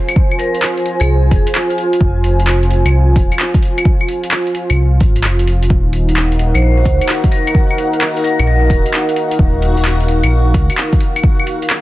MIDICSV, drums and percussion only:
0, 0, Header, 1, 2, 480
1, 0, Start_track
1, 0, Tempo, 461538
1, 171, Time_signature, 4, 2, 24, 8
1, 12283, End_track
2, 0, Start_track
2, 0, Title_t, "Drums"
2, 88, Note_on_c, 9, 42, 59
2, 88, Note_on_c, 9, 75, 63
2, 167, Note_on_c, 9, 36, 121
2, 192, Note_off_c, 9, 42, 0
2, 192, Note_off_c, 9, 75, 0
2, 271, Note_off_c, 9, 36, 0
2, 327, Note_on_c, 9, 75, 37
2, 410, Note_on_c, 9, 46, 68
2, 431, Note_off_c, 9, 75, 0
2, 514, Note_off_c, 9, 46, 0
2, 567, Note_on_c, 9, 42, 56
2, 648, Note_off_c, 9, 42, 0
2, 648, Note_on_c, 9, 39, 110
2, 648, Note_on_c, 9, 42, 34
2, 752, Note_off_c, 9, 39, 0
2, 752, Note_off_c, 9, 42, 0
2, 806, Note_on_c, 9, 46, 41
2, 891, Note_off_c, 9, 46, 0
2, 891, Note_on_c, 9, 46, 70
2, 995, Note_off_c, 9, 46, 0
2, 1048, Note_on_c, 9, 42, 58
2, 1048, Note_on_c, 9, 75, 64
2, 1152, Note_off_c, 9, 42, 0
2, 1152, Note_off_c, 9, 75, 0
2, 1367, Note_on_c, 9, 36, 110
2, 1369, Note_on_c, 9, 46, 70
2, 1471, Note_off_c, 9, 36, 0
2, 1473, Note_off_c, 9, 46, 0
2, 1527, Note_on_c, 9, 42, 59
2, 1613, Note_on_c, 9, 39, 108
2, 1631, Note_off_c, 9, 42, 0
2, 1717, Note_off_c, 9, 39, 0
2, 1771, Note_on_c, 9, 42, 48
2, 1851, Note_on_c, 9, 46, 69
2, 1875, Note_off_c, 9, 42, 0
2, 1955, Note_off_c, 9, 46, 0
2, 2008, Note_on_c, 9, 42, 58
2, 2085, Note_on_c, 9, 36, 124
2, 2112, Note_off_c, 9, 42, 0
2, 2189, Note_off_c, 9, 36, 0
2, 2329, Note_on_c, 9, 46, 70
2, 2433, Note_off_c, 9, 46, 0
2, 2491, Note_on_c, 9, 42, 57
2, 2571, Note_off_c, 9, 42, 0
2, 2571, Note_on_c, 9, 39, 114
2, 2571, Note_on_c, 9, 42, 33
2, 2675, Note_off_c, 9, 39, 0
2, 2675, Note_off_c, 9, 42, 0
2, 2736, Note_on_c, 9, 42, 31
2, 2814, Note_on_c, 9, 46, 68
2, 2840, Note_off_c, 9, 42, 0
2, 2918, Note_off_c, 9, 46, 0
2, 2971, Note_on_c, 9, 42, 59
2, 2971, Note_on_c, 9, 75, 62
2, 3075, Note_off_c, 9, 42, 0
2, 3075, Note_off_c, 9, 75, 0
2, 3286, Note_on_c, 9, 36, 111
2, 3291, Note_on_c, 9, 46, 70
2, 3390, Note_off_c, 9, 36, 0
2, 3395, Note_off_c, 9, 46, 0
2, 3450, Note_on_c, 9, 42, 55
2, 3450, Note_on_c, 9, 75, 36
2, 3530, Note_on_c, 9, 39, 109
2, 3554, Note_off_c, 9, 42, 0
2, 3554, Note_off_c, 9, 75, 0
2, 3634, Note_off_c, 9, 39, 0
2, 3685, Note_on_c, 9, 36, 107
2, 3690, Note_on_c, 9, 42, 45
2, 3769, Note_on_c, 9, 46, 69
2, 3789, Note_off_c, 9, 36, 0
2, 3794, Note_off_c, 9, 42, 0
2, 3873, Note_off_c, 9, 46, 0
2, 3929, Note_on_c, 9, 42, 56
2, 3929, Note_on_c, 9, 75, 60
2, 4006, Note_on_c, 9, 36, 125
2, 4033, Note_off_c, 9, 42, 0
2, 4033, Note_off_c, 9, 75, 0
2, 4110, Note_off_c, 9, 36, 0
2, 4168, Note_on_c, 9, 75, 35
2, 4248, Note_on_c, 9, 46, 72
2, 4272, Note_off_c, 9, 75, 0
2, 4352, Note_off_c, 9, 46, 0
2, 4405, Note_on_c, 9, 42, 56
2, 4485, Note_off_c, 9, 42, 0
2, 4485, Note_on_c, 9, 39, 113
2, 4485, Note_on_c, 9, 42, 30
2, 4589, Note_off_c, 9, 39, 0
2, 4589, Note_off_c, 9, 42, 0
2, 4648, Note_on_c, 9, 46, 41
2, 4730, Note_off_c, 9, 46, 0
2, 4730, Note_on_c, 9, 46, 71
2, 4834, Note_off_c, 9, 46, 0
2, 4887, Note_on_c, 9, 42, 58
2, 4887, Note_on_c, 9, 75, 59
2, 4991, Note_off_c, 9, 42, 0
2, 4991, Note_off_c, 9, 75, 0
2, 5205, Note_on_c, 9, 46, 74
2, 5207, Note_on_c, 9, 36, 109
2, 5309, Note_off_c, 9, 46, 0
2, 5311, Note_off_c, 9, 36, 0
2, 5365, Note_on_c, 9, 42, 56
2, 5446, Note_on_c, 9, 39, 108
2, 5469, Note_off_c, 9, 42, 0
2, 5550, Note_off_c, 9, 39, 0
2, 5608, Note_on_c, 9, 42, 45
2, 5693, Note_on_c, 9, 46, 72
2, 5712, Note_off_c, 9, 42, 0
2, 5797, Note_off_c, 9, 46, 0
2, 5851, Note_on_c, 9, 42, 55
2, 5929, Note_on_c, 9, 36, 121
2, 5955, Note_off_c, 9, 42, 0
2, 6033, Note_off_c, 9, 36, 0
2, 6167, Note_on_c, 9, 46, 73
2, 6271, Note_off_c, 9, 46, 0
2, 6330, Note_on_c, 9, 42, 51
2, 6411, Note_off_c, 9, 42, 0
2, 6411, Note_on_c, 9, 39, 105
2, 6411, Note_on_c, 9, 42, 30
2, 6515, Note_off_c, 9, 39, 0
2, 6515, Note_off_c, 9, 42, 0
2, 6573, Note_on_c, 9, 42, 30
2, 6649, Note_on_c, 9, 46, 76
2, 6677, Note_off_c, 9, 42, 0
2, 6753, Note_off_c, 9, 46, 0
2, 6812, Note_on_c, 9, 42, 55
2, 6812, Note_on_c, 9, 75, 60
2, 6916, Note_off_c, 9, 42, 0
2, 6916, Note_off_c, 9, 75, 0
2, 7129, Note_on_c, 9, 36, 105
2, 7134, Note_on_c, 9, 46, 74
2, 7233, Note_off_c, 9, 36, 0
2, 7238, Note_off_c, 9, 46, 0
2, 7295, Note_on_c, 9, 42, 54
2, 7295, Note_on_c, 9, 75, 36
2, 7371, Note_on_c, 9, 39, 107
2, 7399, Note_off_c, 9, 42, 0
2, 7399, Note_off_c, 9, 75, 0
2, 7475, Note_off_c, 9, 39, 0
2, 7528, Note_on_c, 9, 36, 109
2, 7533, Note_on_c, 9, 42, 44
2, 7612, Note_on_c, 9, 46, 74
2, 7632, Note_off_c, 9, 36, 0
2, 7637, Note_off_c, 9, 42, 0
2, 7716, Note_off_c, 9, 46, 0
2, 7772, Note_on_c, 9, 42, 54
2, 7772, Note_on_c, 9, 75, 58
2, 7848, Note_on_c, 9, 36, 116
2, 7876, Note_off_c, 9, 42, 0
2, 7876, Note_off_c, 9, 75, 0
2, 7952, Note_off_c, 9, 36, 0
2, 8013, Note_on_c, 9, 75, 36
2, 8094, Note_on_c, 9, 46, 77
2, 8117, Note_off_c, 9, 75, 0
2, 8198, Note_off_c, 9, 46, 0
2, 8251, Note_on_c, 9, 42, 53
2, 8332, Note_off_c, 9, 42, 0
2, 8332, Note_on_c, 9, 39, 102
2, 8332, Note_on_c, 9, 42, 30
2, 8436, Note_off_c, 9, 39, 0
2, 8436, Note_off_c, 9, 42, 0
2, 8496, Note_on_c, 9, 46, 46
2, 8574, Note_off_c, 9, 46, 0
2, 8574, Note_on_c, 9, 46, 77
2, 8678, Note_off_c, 9, 46, 0
2, 8730, Note_on_c, 9, 42, 53
2, 8730, Note_on_c, 9, 75, 64
2, 8834, Note_off_c, 9, 42, 0
2, 8834, Note_off_c, 9, 75, 0
2, 9048, Note_on_c, 9, 36, 100
2, 9055, Note_on_c, 9, 46, 76
2, 9152, Note_off_c, 9, 36, 0
2, 9159, Note_off_c, 9, 46, 0
2, 9212, Note_on_c, 9, 42, 51
2, 9294, Note_on_c, 9, 39, 101
2, 9316, Note_off_c, 9, 42, 0
2, 9398, Note_off_c, 9, 39, 0
2, 9451, Note_on_c, 9, 42, 44
2, 9530, Note_on_c, 9, 46, 79
2, 9555, Note_off_c, 9, 42, 0
2, 9634, Note_off_c, 9, 46, 0
2, 9686, Note_on_c, 9, 42, 55
2, 9766, Note_on_c, 9, 36, 113
2, 9790, Note_off_c, 9, 42, 0
2, 9870, Note_off_c, 9, 36, 0
2, 10006, Note_on_c, 9, 46, 77
2, 10110, Note_off_c, 9, 46, 0
2, 10162, Note_on_c, 9, 42, 54
2, 10243, Note_off_c, 9, 42, 0
2, 10243, Note_on_c, 9, 39, 105
2, 10243, Note_on_c, 9, 42, 30
2, 10347, Note_off_c, 9, 39, 0
2, 10347, Note_off_c, 9, 42, 0
2, 10404, Note_on_c, 9, 42, 31
2, 10487, Note_on_c, 9, 46, 78
2, 10508, Note_off_c, 9, 42, 0
2, 10591, Note_off_c, 9, 46, 0
2, 10644, Note_on_c, 9, 42, 55
2, 10644, Note_on_c, 9, 75, 65
2, 10748, Note_off_c, 9, 42, 0
2, 10748, Note_off_c, 9, 75, 0
2, 10965, Note_on_c, 9, 36, 100
2, 10968, Note_on_c, 9, 46, 82
2, 11069, Note_off_c, 9, 36, 0
2, 11072, Note_off_c, 9, 46, 0
2, 11125, Note_on_c, 9, 42, 54
2, 11125, Note_on_c, 9, 75, 38
2, 11207, Note_on_c, 9, 39, 102
2, 11229, Note_off_c, 9, 42, 0
2, 11229, Note_off_c, 9, 75, 0
2, 11311, Note_off_c, 9, 39, 0
2, 11363, Note_on_c, 9, 36, 99
2, 11365, Note_on_c, 9, 42, 43
2, 11445, Note_on_c, 9, 46, 74
2, 11467, Note_off_c, 9, 36, 0
2, 11469, Note_off_c, 9, 42, 0
2, 11549, Note_off_c, 9, 46, 0
2, 11608, Note_on_c, 9, 42, 57
2, 11608, Note_on_c, 9, 75, 61
2, 11684, Note_on_c, 9, 36, 119
2, 11712, Note_off_c, 9, 42, 0
2, 11712, Note_off_c, 9, 75, 0
2, 11788, Note_off_c, 9, 36, 0
2, 11851, Note_on_c, 9, 75, 39
2, 11928, Note_on_c, 9, 46, 76
2, 11955, Note_off_c, 9, 75, 0
2, 12032, Note_off_c, 9, 46, 0
2, 12088, Note_on_c, 9, 42, 57
2, 12167, Note_off_c, 9, 42, 0
2, 12167, Note_on_c, 9, 39, 106
2, 12167, Note_on_c, 9, 42, 34
2, 12271, Note_off_c, 9, 39, 0
2, 12271, Note_off_c, 9, 42, 0
2, 12283, End_track
0, 0, End_of_file